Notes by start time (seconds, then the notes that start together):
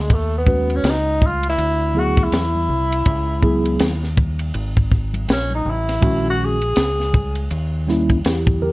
0.00 G#3
0.10 D#2, kick, ride, shaker
0.14 A3
0.32 shaker
0.38 B3
0.46 G#3 C#4 F#4 B4, kick, high conga, shaker
0.70 ride, shaker
0.76 C#4
0.83 C#2, snare, hi-hat pedal, ride, shaker
0.90 D#4
1.06 shaker
1.22 kick, high conga, low conga, shaker
1.26 F4
1.43 ride, shaker
1.50 E4
1.58 D2, ride, shaker
1.80 shaker
1.94 F#3 B3 E4 G#4, low conga, shaker
1.99 F#4
2.17 kick, ride, high conga, shaker
2.24 E4
2.32 E2, snare, hi-hat pedal, ride, shaker
2.54 high conga, shaker
2.69 C2, high conga, low conga, shaker
2.92 ride, shaker
3.05 C#2, kick, ride, shaker
3.29 shaker
3.42 F#3 B3 E4 G#4, kick, shaker
3.65 ride, shaker
3.79 D#2, snare, hi-hat pedal, ride, shaker
4.02 snare, shaker
4.17 kick, high conga, low conga, shaker
4.39 ride, shaker
4.54 G#1, ride, shaker
4.76 kick, shaker
4.90 kick, shaker
5.14 ride, high conga, shaker
5.27 A#1, snare, hi-hat pedal, ride, shaker
5.32 C#4
5.50 high conga, shaker
5.55 D#4
5.65 A1, high conga, low conga, shaker
5.70 E4
5.88 snare, ride, shaker
6.00 A#1 D#3 G#3 C#4 F#4, kick, ride, shaker
6.24 shaker
6.30 F#4
6.39 shaker
6.45 G#4
6.62 ride, shaker
6.74 C#2, snare, hi-hat pedal, ride, shaker
6.97 snare, shaker
7.13 kick, high conga, low conga, shaker
7.35 ride, shaker
7.50 D#2, ride, shaker
7.73 shaker
7.87 G3 A#3 C#4 E4, snare, shaker
8.09 kick, ride, high conga, shaker
8.24 E2 E4 G4, snare, hi-hat pedal, ride, shaker
8.46 kick, high conga, shaker
8.62 G4 A#4, high conga, low conga, shaker